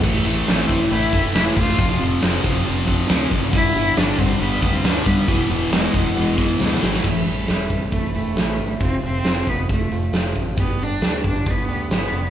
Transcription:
<<
  \new Staff \with { instrumentName = "Cello" } { \time 4/4 \key a \minor \tempo 4 = 137 r4 c'4 e'4 e'8 f'8~ | f'8 r2. r8 | e'4 d'8 c'8 b8. c'16 d'8 b8~ | b8 r8 gis4 gis4 gis8 gis8 |
a8 g4. a8 a4. | c'8 c'4 b8 a4 r4 | b8 d'4 d'8 b4 b4 | }
  \new Staff \with { instrumentName = "Clean electric guitar" } { \time 4/4 \key a \minor r1 | r1 | r1 | r1 |
<a, e a c' e'>8 <a c' e'>8 <e a c' e'>4. <a c' e'>8 <a, e a c' e'>8 <a c' e'>8 | <f, c f a c' f'>8 <f a c' f'>8 <f a c' f'>4. <f a c' f'>8 <f, c f a c' f'>8 <f a c' f'>8 | <g, d g b d' g'>8 <g b d' g'>8 <g b d' g'>4. <g b d' g'>8 <g, d g b d' g'>8 <g b d' g'>8 | }
  \new Staff \with { instrumentName = "Distorted electric guitar" } { \clef bass \time 4/4 \key a \minor <a, e a>8 <a, e a>8 <a, e a>8 <a, e a>8 <a, e a>8 <a, e a>8 <a, e a>8 <a, e a>8 | <f, c f>8 <f, c f>8 <f, c f>8 <f, c f>8 <f, c f>8 <f, c f>8 <f, c f>8 <f, c f>8 | <g, d g>8 <g, d g>8 <g, d g>8 <g, d g>8 <g, d g>8 <g, d g>8 <g, d g>8 <g, d g>8 | <e, b, e>8 <e, b, e>8 <e, b, e>8 <e, b, e>8 <e, b, e>8 <e, b, e>8 <e, b, e>8 <e, b, e>8 |
r1 | r1 | r1 | }
  \new Staff \with { instrumentName = "Fingered electric bass" } { \clef bass \time 4/4 \key a \minor a,,8 a,,8 a,,8 a,,8 a,,8 e,,8 e,,8 e,,8 | f,,8 f,,8 f,,8 f,,8 f,,4 d,8 fis,,8 | g,,8 g,,8 g,,8 g,,8 g,,8 d,8 d,8 g,8 | e,,8 e,,8 e,,8 e,,8 e,,4 d,8 gis,,8 |
a,,8 a,,8 e,,8 a,,8 a,,8 e,,8 a,,8 g,,8 | f,,8 f,,8 f,,8 f,,8 f,,8 f,,8 f,,8 a,,8 | g,,8 g,,8 d,8 g,,8 g,,8 d,8 g,,8 f,,8 | }
  \new DrumStaff \with { instrumentName = "Drums" } \drummode { \time 4/4 <cymc hho bd>4 <hho sn>8 bd8 hho8 bd8 <hho sn>8 <bd sn>8 | <hho bd>4 <hho sn>8 bd8 hho8 bd8 <hho sn>8 <bd sn>8 | <hho bd>4 <hho sn>8 bd8 hho8 bd8 <hho sn>8 bd8 | <hho bd>4 <hho sn>8 bd8 hho8 bd8 sn16 sn16 sn16 sn16 |
<cymc bd>8 hho8 <hho sn>8 <hho bd>8 <hho bd>8 hho8 <hho sn>8 hho8 | <hho bd>8 hho8 <hho sn>8 <hho bd>8 <hho bd>8 hho8 <hho sn>8 <hho bd>8 | <hho bd>8 hho8 <hho sn>8 <hho bd>8 <hho bd>8 hho8 <hho sn>8 hho8 | }
>>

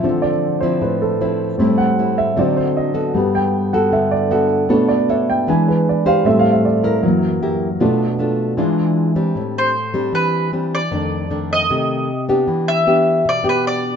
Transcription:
<<
  \new Staff \with { instrumentName = "Mandolin" } { \time 4/4 \key a \minor \tempo 4 = 154 r1 | r1 | r1 | r1 |
r1 | r1 | r8 c''4. b'4 r8 d''8~ | d''4. ees''2 r8 |
r8 e''4. d''8 b'8 d''4 | }
  \new Staff \with { instrumentName = "Grand piano" } { \time 4/4 \key a \minor r8 d''4 c''8 b'8 a'8 c''8 r8 | r8 fis''4 e''8 d''8 c''8 ees''8 r8 | r8 g''4 fis''8 e''8 d''8 fis''8 r8 | r8 d''8 e''8 g''8 gis''8 b'8 d''8 f''8 |
\tuplet 3/2 { e''8 f''8 e''8 } d''8 bes'2~ bes'8 | r1 | r1 | r1 |
r1 | }
  \new Staff \with { instrumentName = "Grand piano" } { \clef bass \time 4/4 \key a \minor <d f c'>8 r2. r8 | <a, g c'>8 r4. <d fis c'>8 r4. | <g, b>4. r2 r8 | <b, a d'>8 r4. <e gis d'>4. r8 |
<a, g c'>4. r8 <fis, e ais>2 | <b, a d'>8 r4. <e gis d'>2 | r1 | r1 |
r1 | }
  \new Staff \with { instrumentName = "Nylon-string guitar" } { \time 4/4 \key a \minor << { <f c' e'>4. <f c' e'>4. <f c' e'>4 | <g c' e'>4 <g c' e'>4 <fis c' ees'>4. <b fis' a'>8~ | <b fis' a'>4. <b fis' a'>4. <b fis' a'>4 | <d' a' cis''>8 r8 <d' a' cis''>4 <d' gis' b'>4. <d' g' c''>8~ |
<d' g' c''>4. <e' bes'>4. <e' g' ais'>8 r8 | <a d' f'>8 r8 <a d' f'>4 <gis d' f'>4. <g c' d'>8~ | <g c' d'>4 r8 <g c' d'>4. <g c' d'>8 r8 | <ees a d'>4 <ees a d'>4 <ees a>4 r8 <b d' g'>8~ |
<b d' g'>4 <b d' g'>4 r8 <b d' g'>4. | } \\ { d2 a,2 | a,2 d2 | g2 d2 | b2 e2 |
a2 fis2 | b,2 e2 | a,2 e2 | f,2 c2 |
e2 b,2 | } >> }
>>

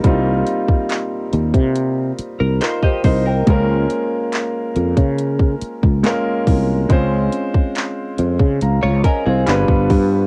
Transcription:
<<
  \new Staff \with { instrumentName = "Clean electric guitar" } { \time 4/4 \key c \phrygian \tempo 4 = 70 r2 r8. bes'16 <ees' c''>16 <g' ees''>16 <ees' c''>16 bes'16~ | bes'16 r2. r8. | r2 r16 <f' des''>16 <des' bes'>16 <c' aes'>8 r8. | }
  \new Staff \with { instrumentName = "Grand piano" } { \time 4/4 \key c \phrygian << { r2. <f' bes'>16 <g' c''>16 <bes' ees''>16 <c'' g''>16~ | <c'' g''>16 r2. r8. | r2 <f'' bes''>8 <ees'' aes''>16 <c'' f''>8 r8. | } \\ { <g bes c' ees' f'>4. r2 r8 | <aes bes des' f' bes'>4. r4. <aes bes des' f' bes'>8. r16 | <aes c' des' f' c''>4. r4. <g b d' f' b'>8. r16 | } >> }
  \new Staff \with { instrumentName = "Fretless electric bass" } { \clef bass \time 4/4 \key c \phrygian c,8 r4 ees,16 c8. r16 c,16 r8 c,8 | des,8 r4 f,16 des8. r16 des,16 r8 c,8 | des,8 r4 f,16 des16 des,16 des,16 r16 c,16 g,,16 g,,16 g,8 | }
  \new DrumStaff \with { instrumentName = "Drums" } \drummode { \time 4/4 <hh bd>8 hh16 bd16 <hc hh>8 hh16 <hh bd>16 hh8 hh8 <hc hh>16 bd16 <hho bd>8 | <hh bd>8 hh8 <hc hh>8 hh16 <hh bd>16 hh16 bd16 hh16 bd16 <hc hh>8 <hho bd>8 | <hh bd>8 hh16 bd16 <hc hh>8 hh16 bd16 hh8 <hh bd>8 <hc hh>16 bd16 <hho bd>8 | }
>>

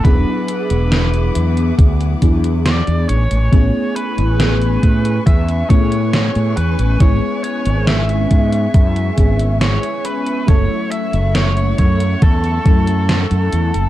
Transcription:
<<
  \new Staff \with { instrumentName = "String section" } { \time 4/4 \key a \major \tempo 4 = 69 << { <gis' fis'' d'''>2.~ <gis' fis'' d'''>8 <b' cis'''>8~ | <b' cis'''>1~ | <b' cis'''>1 | <a fis'' cis'''>1 | } \\ { e''2.~ e''8 gis''8~ | gis''1 | e''1~ | e''1 | } >> }
  \new Staff \with { instrumentName = "Lead electric guitar" } { \time 4/4 \key a \major b'2 r4 d''8 cis''8~ | cis''8 b'4. e''8 cis''4 b'8 | cis''8 cis''8 e''2 cis''8 b'8 | cis''8 e''8 cis''8 cis''8 a'2 | }
  \new Staff \with { instrumentName = "FM electric piano" } { \time 4/4 \key a \major <fis b d' e' gis'>2~ <fis b d' e' gis'>8 <fis b d' e' gis'>4 r8 | <a b cis' e' gis'>2~ <a b cis' e' gis'>8 <a b cis' e' gis'>4. | <gis b cis' e' gis'>2~ <gis b cis' e' gis'>8 <gis b cis' e' gis'>4. | <fis a cis' e' a'>2~ <fis a cis' e' a'>8 <fis a cis' e' a'>4. | }
  \new Staff \with { instrumentName = "Fretless electric bass" } { \clef bass \time 4/4 \key a \major e,,16 r8 e,,8. e,8 d,8 e,8. e,16 a,,16 a,,16 | a,,16 r8 a,,8. a,8 e,8 a,8. a,16 e,16 a,,16 | gis,,16 r8 gis,,8. gis,8 fis,8 gis,,8. r8. | fis,,16 r8 fis,,8. fis,8 e,8 fis,8. fis,16 e,16 fis,,16 | }
  \new DrumStaff \with { instrumentName = "Drums" } \drummode { \time 4/4 <hh bd>8 hh16 hh16 <hh sn>16 hh16 hh16 hh16 <hh bd>16 hh16 <hh bd>16 hh16 <hh sn>16 hh16 hh16 hh16 | <hh bd>8 hh16 hh16 <hh sn>16 hh16 <hh bd>16 hh16 <hh bd>16 hh16 <hh bd>16 hh16 <hh sn>16 hh16 hh16 hh16 | <hh bd>8 hh16 hh16 <hh sn>16 hh16 <hh bd>16 hh16 <hh bd>16 hh16 <hh bd>16 hh16 <hh sn>16 hh16 hh16 hh16 | <hh bd>8 hh16 hh16 <hh sn>16 hh16 <hh bd>16 hh16 <hh bd>16 hh16 <hh bd>16 hh16 <hh sn>16 hh16 hh16 hh16 | }
>>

